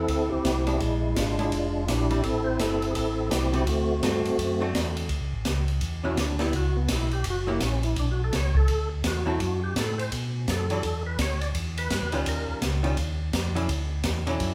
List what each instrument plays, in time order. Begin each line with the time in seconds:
Already playing: tonewheel organ C4 E4 A4
0.08 tonewheel organ D2, kick, ride
0.29 tonewheel organ D2 C4 E4 G4
0.44 tonewheel organ C2, kick, snare, hi-hat pedal, ride
0.67 hollow-body jazz guitar G#3 D4 E4, tonewheel organ G4, ride
0.78 tonewheel organ A#1 G#3 E4, kick, ride
1.16 tonewheel organ G#1 G#3 D4 F4, kick, snare, hi-hat pedal, ride
1.39 hollow-body jazz guitar G#3 D4 E4, ride
1.52 tonewheel organ F1, kick, ride
1.87 tonewheel organ A#1 D4 E4 G4, kick, snare, hi-hat pedal, ride
2.10 hollow-body jazz guitar G3 C4 E4, ride
2.23 tonewheel organ A1 C4 E4 A4, kick, ride
2.44 tonewheel organ C5
2.59 tonewheel organ G1 C4 E4 A4, kick, snare, hi-hat pedal, ride
2.82 ride
2.91 tonewheel organ A1 G#4 A4
2.95 tonewheel organ C4 E4, kick, ride
3.30 tonewheel organ C2 C4 E4 G4, kick, snare, hi-hat pedal, ride
3.53 hollow-body jazz guitar D3 A3 C4 F#4, ride
3.67 tonewheel organ D2 A3 C4, kick, ride
4.03 tonewheel organ G2, hollow-body jazz guitar D3 A3 C4 F#4, kick, snare, hi-hat pedal, ride
4.24 tonewheel organ G2, ride
4.38 tonewheel organ F#2, kick, ride
4.61 hollow-body jazz guitar D3 A3 C4 F#4
4.74 tonewheel organ E2, kick, snare, hi-hat pedal, ride
4.97 ride
5.09 tonewheel organ D2, kick, ride
5.21 tonewheel organ C#2
5.33 tonewheel organ A1
5.45 tonewheel organ C#2, kick, snare, hi-hat pedal, ride
5.68 ride
5.81 tonewheel organ E2, kick, ride
6.04 hollow-body jazz guitar D3 F#3 C#4 E4, tonewheel organ F#4
6.17 tonewheel organ D2 D4, kick, snare, hi-hat pedal, ride
6.39 hollow-body jazz guitar G3 B3 E4, tonewheel organ E4, snare, ride
6.53 tonewheel organ C#2 F#4, kick, ride
6.76 tonewheel organ B3
6.88 tonewheel organ B1 E4, kick, snare, hi-hat pedal, ride
7.11 tonewheel organ G4, ride
7.24 tonewheel organ F#1, kick, ride
7.30 tonewheel organ F#4
7.47 hollow-body jazz guitar F#3 A#3 E4 G4, tonewheel organ A#3
7.60 tonewheel organ A#1, kick, snare, hi-hat pedal, ride
7.65 tonewheel organ C#4
7.83 tonewheel organ E4, ride
7.96 tonewheel organ B1 D4, kick, ride
8.11 tonewheel organ F#4
8.24 tonewheel organ A4
8.32 tonewheel organ C#2 C#5, kick, snare, hi-hat pedal, ride
8.55 tonewheel organ A4, kick
8.68 tonewheel organ D2, kick, ride
9.03 tonewheel organ E2, kick, snare, hi-hat pedal, ride
9.08 tonewheel organ F#4
9.26 hollow-body jazz guitar F#3 C4 E4 A4
9.40 tonewheel organ F#2, kick, ride
9.64 tonewheel organ G4
9.76 tonewheel organ A2 A4, kick, snare, hi-hat pedal, ride
9.98 tonewheel organ C5, ride
10.12 tonewheel organ B2, kick, ride
10.48 tonewheel organ F#2 A4, kick, snare, hi-hat pedal, ride
10.70 hollow-body jazz guitar E3 G3 D4 F#4, ride
10.83 tonewheel organ E2, kick, ride
11.06 tonewheel organ B4
11.18 tonewheel organ D2 C#5, kick, snare, hi-hat pedal, ride
11.41 tonewheel organ D5, ride
11.54 tonewheel organ E2, kick, ride
11.77 tonewheel organ B4, ride
11.90 tonewheel organ G2, kick, snare, hi-hat pedal, ride
12.02 tonewheel organ E2
12.12 tonewheel organ D2, hollow-body jazz guitar D#3 G3 C#4 F4, ride
12.26 tonewheel organ D#2 A#4, kick, ride
12.48 tonewheel organ D#2
12.61 tonewheel organ C#2, kick, snare, hi-hat pedal, ride
12.83 hollow-body jazz guitar D#3 G3 C#4 F4, ride
12.97 tonewheel organ D#2, kick, ride
13.33 tonewheel organ F2, kick, snare, hi-hat pedal, ride
13.55 hollow-body jazz guitar D3 F#3 C#4 E4, ride
13.69 tonewheel organ D2, kick, ride
14.04 tonewheel organ E2, kick, snare, hi-hat pedal, ride
14.27 hollow-body jazz guitar D3 F#3 C#4 E4, ride
14.40 tonewheel organ F#2, kick, ride